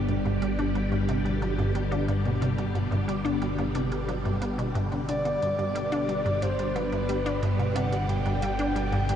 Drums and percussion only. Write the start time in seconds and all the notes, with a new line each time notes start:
0.09 closed hi-hat
0.25 closed hi-hat, low woodblock
0.42 closed hi-hat
0.59 closed hi-hat
0.75 closed hi-hat, low woodblock
0.92 closed hi-hat
1.09 closed hi-hat, low woodblock
1.26 closed hi-hat
1.42 closed hi-hat
1.59 closed hi-hat, low woodblock
1.75 closed hi-hat
1.92 closed hi-hat, low woodblock
2.08 closed hi-hat
2.25 closed hi-hat
2.42 closed hi-hat, low woodblock
2.58 closed hi-hat
2.75 closed hi-hat, low woodblock
2.92 closed hi-hat
3.09 closed hi-hat
3.26 closed hi-hat, low woodblock
3.42 closed hi-hat
3.58 closed hi-hat, low woodblock
3.75 closed hi-hat
3.92 closed hi-hat
4.09 closed hi-hat, low woodblock
4.25 closed hi-hat
4.42 closed hi-hat, low woodblock
4.59 closed hi-hat
4.75 closed hi-hat
4.92 closed hi-hat, low woodblock
5.09 closed hi-hat
5.25 closed hi-hat, low woodblock
5.42 closed hi-hat
5.59 closed hi-hat, low woodblock
5.76 closed hi-hat
5.92 closed hi-hat, low woodblock
6.09 closed hi-hat
6.26 closed hi-hat
6.42 closed hi-hat, low woodblock
6.59 closed hi-hat
6.76 closed hi-hat, low woodblock
6.92 closed hi-hat
7.09 closed hi-hat
7.26 closed hi-hat, low woodblock
7.43 closed hi-hat
7.59 closed hi-hat, low woodblock
7.76 closed hi-hat
7.93 closed hi-hat
8.09 closed hi-hat, low woodblock
8.26 closed hi-hat
8.42 closed hi-hat, low woodblock
8.59 closed hi-hat
8.76 closed hi-hat
8.92 closed hi-hat, low woodblock
9.09 closed hi-hat